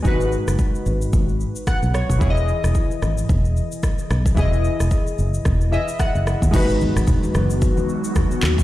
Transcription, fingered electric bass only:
X:1
M:4/4
L:1/16
Q:"Swing 16ths" 1/4=111
K:G#m
V:1 name="Fingered electric bass" clef=bass
G,,,3 F,,, z2 G,,,2 G,,,3 z2 B,,,2 B,,, | E,,,3 E,,, z2 G,,,2 E,,,3 z3 B,,,2 | E,,,3 E,,, z2 F,,,2 E,,,3 z2 F,,,2 D,, | G,,,3 G,,, z2 F,,,3 z4 z D,,2 |]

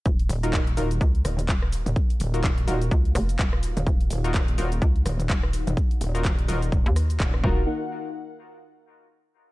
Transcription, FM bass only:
X:1
M:4/4
L:1/16
Q:"Swing 16ths" 1/4=126
K:Ebm
V:1 name="FM bass" clef=bass
E,,,2 z6 D,,2 z2 E,,,3 z | z8 D,,2 F,,,2 E,,,3 z | E,,,2 z6 D,,2 z2 E,,,3 z | z8 z E,,3 z2 E,,,2 |
z16 |]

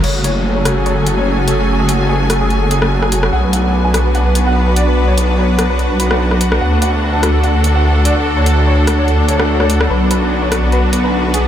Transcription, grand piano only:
X:1
M:4/4
L:1/16
Q:"Swing 16ths" 1/4=146
K:F#m
V:1 name="Grand piano"
c F c F F c F F c F F c F F A F | F G F F G F F G F F G F F G F F | f B f B B g B B f B B f B B d B | B c B B c B B B B B B B B B B B |
f A f A A a A A f A A f A A d A | A c A A c A A c A A c A A c A A | B B, B B, B, c B, B, B B, B, B B, B, G z |]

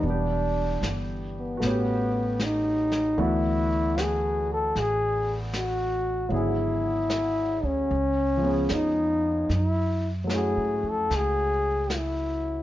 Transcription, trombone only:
X:1
M:4/4
L:1/8
Q:"Swing" 1/4=76
K:F#dor
V:1 name="Trombone"
=D2 z B,3 ^D2 | E2 G A G z F2 | E3 C3 D2 | E z G A G2 E2 |]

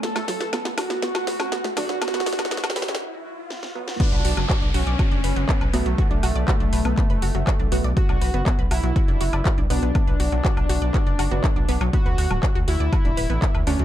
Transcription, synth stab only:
X:1
M:4/4
L:1/16
Q:1/4=121
K:Bm
V:1 name="Synth stab" clef=bass
z12 z2 [D,A,D] z | z12 z2 [B,,F,B,]2- | [B,,F,B,]2 z12 [B,,F,B,] z | z12 z2 [B,,F,B,]2- |
[B,,F,B,]12- [B,,F,B,]2 [B,,F,B,] z | z8 z3 [B,,F,B,] z4 | z12 z2 [D,A,D] z |]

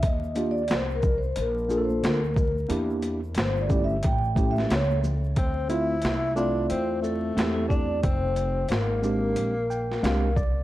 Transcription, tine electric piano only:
X:1
M:4/4
L:1/8
Q:"Swing 16ths" 1/4=90
K:Dm
V:1 name="Tine electric piano"
z [B,DFG] z3 [B,DF^GA] z2 | [B,DEG] z2 [A,^CEG] z [A,CEG] z2 | z [A,CEF] z [A,CEF]3 [A,CEG]2 | z3 [_A,CDG] z g [A,CDGf] d |]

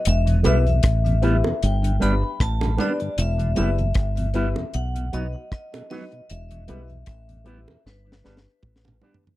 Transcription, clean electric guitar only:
X:1
M:4/4
L:1/8
Q:"Swing 16ths" 1/4=77
K:Em
V:1 name="Clean electric guitar"
z [G,B,E] z [G,B,E] z [G,B,D] z [G,B,D] | z [G,B,E] z [G,B,E] z [F,B,^D] z [F,B,D] | z [G,B,E] z [G,B,E] z [G,B,D] z [G,B,D] |]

